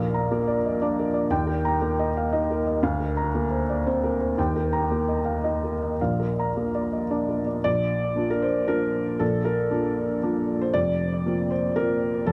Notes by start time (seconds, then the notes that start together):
Already playing: A#1 A#4 F5
0.14 A#5
0.31 A#3 A#4
0.47 D5
0.66 D#5
0.82 D4 D5
0.99 A#4
1.14 D5
1.30 D#2 G5
1.47 A#4
1.65 A#5
1.82 A#3 A#4
1.99 D#5
2.17 F5
2.33 D#4 D#5
2.50 A#4
2.67 D#5
2.83 D2 F5
3.00 A#4
3.17 A#5
3.35 A#3 A#4
3.51 C5
3.70 D5
3.87 C4 C5
4.03 A#4
4.21 C5
4.38 D#2 G5
4.56 A#4
4.73 A#5
4.91 A#3 A#4
5.08 D#5
5.25 F5
5.44 D#4 D#5
5.63 A#4
5.83 D#5
6.01 A#1 F5
6.20 A#4
6.39 A#5
6.57 A#3 A#4
6.75 D5
6.92 D#5
7.11 D4 D5
7.29 A#4
7.46 D5
7.64 A#1 D5
8.16 A#3 D4 F4
8.30 A#4
8.42 C5
8.68 A#3 D4 F4 A#4
9.19 A#1 A4
9.45 A#4
9.71 A#3 D4 F4
10.23 A#3 D4 F4
10.61 C5
10.73 F1 F2 D5
11.26 A#3 C4 F4
11.51 C5
11.76 A#3 C4 F4 A#4
12.26 F1 F2 A4